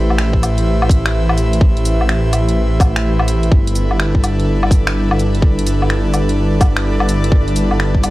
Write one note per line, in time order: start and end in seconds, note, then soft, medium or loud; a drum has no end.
0.00 3.50 A1 medium
0.00 3.48 A3 medium
0.00 8.10 E4 medium
0.00 3.48 G4 medium
0.00 3.48 B4 medium
0.00 3.48 C5 medium
0.00 3.48 E5 medium
0.10 low woodblock soft
0.18 finger snap loud
0.33 kick medium
0.43 closed hi-hat medium
0.43 cabasa medium
0.43 low woodblock soft
0.58 closed hi-hat soft
0.82 low woodblock medium
0.89 kick loud
0.89 closed hi-hat medium
0.89 cabasa medium
1.06 finger snap loud
1.29 low woodblock medium
1.38 closed hi-hat medium
1.38 cabasa medium
1.53 closed hi-hat soft
1.61 kick loud
1.77 closed hi-hat soft
1.85 closed hi-hat medium
1.85 cabasa medium
2.01 low woodblock soft
2.09 finger snap loud
2.33 closed hi-hat medium
2.33 cabasa medium
2.33 low woodblock soft
2.49 closed hi-hat soft
2.80 kick loud
2.80 closed hi-hat medium
2.80 cabasa medium
2.80 low woodblock medium
2.96 finger snap loud
3.19 low woodblock medium
3.28 closed hi-hat medium
3.28 cabasa medium
3.43 closed hi-hat soft
3.52 8.10 G1 medium
3.52 8.10 G3 medium
3.52 8.10 D4 medium
3.52 8.10 A4 medium
3.52 8.10 B4 medium
3.52 8.10 D5 medium
3.52 kick loud
3.67 closed hi-hat soft
3.75 closed hi-hat medium
3.75 cabasa medium
3.91 low woodblock soft
4.00 finger snap loud
4.15 kick medium
4.24 closed hi-hat medium
4.24 cabasa medium
4.24 low woodblock soft
4.40 closed hi-hat soft
4.63 low woodblock medium
4.71 kick loud
4.71 closed hi-hat medium
4.71 cabasa medium
4.87 finger snap loud
5.11 low woodblock medium
5.19 closed hi-hat medium
5.19 cabasa medium
5.35 closed hi-hat soft
5.42 kick loud
5.59 closed hi-hat soft
5.67 closed hi-hat medium
5.67 cabasa medium
5.82 low woodblock soft
5.90 finger snap loud
6.14 closed hi-hat medium
6.14 cabasa medium
6.14 low woodblock soft
6.29 closed hi-hat soft
6.61 kick loud
6.61 closed hi-hat medium
6.61 cabasa medium
6.61 low woodblock medium
6.77 finger snap loud
7.00 low woodblock medium
7.09 closed hi-hat medium
7.09 cabasa medium
7.24 closed hi-hat soft
7.32 kick loud
7.48 closed hi-hat soft
7.56 closed hi-hat medium
7.56 cabasa medium
7.71 low woodblock soft
7.80 finger snap loud
7.95 kick medium
8.04 closed hi-hat medium
8.04 cabasa medium
8.04 low woodblock soft